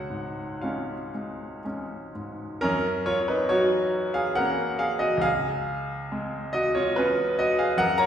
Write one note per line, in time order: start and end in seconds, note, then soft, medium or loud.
0.00 2.57 C#2 soft
0.00 0.59 F#4 medium
0.00 0.59 C#5 medium
0.00 0.62 F#5 medium
0.10 0.94 G#2 soft
0.61 1.10 G#3 soft
0.61 1.11 C#4 soft
0.61 1.60 F4 soft
0.61 1.60 C#5 soft
0.61 1.63 F5 soft
1.15 1.63 G#3 soft
1.65 2.11 G#3 soft
1.65 2.11 C#4 soft
2.15 2.63 G#2 soft
2.61 5.21 F#2 medium
2.61 3.04 C#4 medium
2.61 3.07 A#4 loud
3.06 3.28 F4 medium
3.06 3.29 C#5 medium
3.28 3.50 D#4 medium
3.28 3.50 B4 medium
3.49 4.89 F#3 medium
3.49 4.11 F#4 medium
3.49 4.15 C#5 medium
4.14 4.35 G#4 medium
4.14 4.36 F5 medium
4.35 5.21 A#3 soft
4.35 5.21 C#4 soft
4.35 4.77 A#4 medium
4.35 4.80 F#5 loud
4.79 5.00 G#4 medium
4.79 5.02 F5 medium
4.99 5.22 F#4 medium
4.99 5.23 D#5 medium
5.17 7.73 C#2 medium
5.21 6.49 G#4 medium
5.21 6.52 F5 medium
6.12 7.48 G#3 medium
6.53 6.74 F#4 medium
6.53 6.75 D#5 medium
6.75 6.96 F4 medium
6.75 6.96 C#5 medium
6.96 7.77 B3 soft
6.96 7.77 C#4 medium
6.96 7.37 F4 medium
6.96 7.39 B4 medium
7.39 7.59 F#4 medium
7.39 7.60 D#5 medium
7.59 7.78 G#4 medium
7.59 7.80 F5 medium
7.77 8.06 F#2 medium
7.77 7.99 A#4 medium
7.77 7.99 F#5 loud
7.98 8.06 C#5 medium
7.98 8.06 A#5 loud